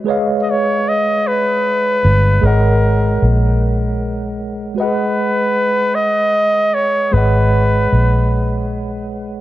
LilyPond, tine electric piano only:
\new Staff \with { instrumentName = "Tine electric piano" } { \time 6/8 \key b \major \tempo 4. = 51 <gis gis' b' cis'' dis'' eis''>2. | <gis gis' ais' cis'' dis'' fis''>2. | <gis fis' gis' b' dis'' fis''>2. | <gis gis' b' cis'' dis'' fis''>2. | }